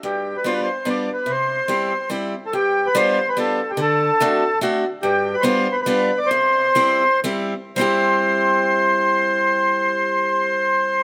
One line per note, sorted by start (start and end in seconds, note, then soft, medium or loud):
0.03 0.35 G2 medium
0.03 0.37 G4 medium
0.37 0.46 B4 medium
0.44 0.67 G3 medium
0.44 0.67 B3 medium
0.44 0.68 D4 medium
0.44 0.68 F4 medium
0.44 0.53 C5 medium
0.53 0.60 B4 medium
0.63 0.89 C5 medium
0.85 1.08 G3 medium
0.85 1.08 B3 soft
0.85 1.09 D4 medium
0.85 1.09 F4 soft
0.90 1.11 D5 medium
1.14 1.31 B4 medium
1.26 1.59 C3 medium
1.30 2.09 C5 medium
1.68 1.92 G3 medium
1.68 1.92 C4 soft
1.68 1.92 E4 soft
1.68 1.92 G4 medium
2.10 2.33 G3 medium
2.10 2.33 C4 soft
2.10 2.34 E4 medium
2.10 2.34 G4 medium
2.46 2.54 A4 medium
2.53 2.85 G2 medium
2.53 2.87 G4 loud
2.87 2.96 B4 loud
2.95 3.18 G3 medium
2.95 3.18 B3 medium
2.95 3.18 D4 medium
2.95 3.19 F4 medium
2.95 3.29 C5 loud
3.29 3.38 B4 medium
3.37 3.59 G3 medium
3.37 3.60 B3 medium
3.37 3.60 D4 medium
3.37 3.60 F4 medium
3.37 3.71 A4 medium
3.71 3.80 G4 medium
3.77 4.09 D3 medium
3.82 4.59 A4 loud
4.20 4.42 A3 medium
4.20 4.43 C4 medium
4.20 4.43 D4 medium
4.20 4.43 F#4 medium
4.61 4.83 A3 medium
4.61 4.84 C4 medium
4.61 4.84 D4 medium
4.61 4.84 F#4 medium
5.03 5.34 G2 medium
5.03 5.35 G4 loud
5.34 5.43 B4 medium
5.41 5.66 G3 medium
5.41 5.66 B3 medium
5.41 5.67 D4 medium
5.41 5.67 F4 medium
5.41 5.76 C5 loud
5.72 5.81 B4 medium
5.82 6.19 B4 medium
5.86 6.10 G3 medium
5.86 6.10 B3 soft
5.86 6.10 D4 medium
5.86 6.10 F4 medium
6.18 6.30 D5 medium
6.27 7.20 C5 loud
6.31 6.66 C3 medium
6.75 7.02 G3 medium
6.75 7.02 C4 medium
6.75 7.02 E4 medium
6.75 7.02 G4 medium
7.24 7.53 G3 medium
7.24 7.53 C4 medium
7.24 7.53 E4 medium
7.24 7.53 G4 medium
7.76 11.03 G3 medium
7.76 11.03 C4 medium
7.76 11.03 E4 medium
7.76 11.03 C5 loud
7.81 11.03 G4 medium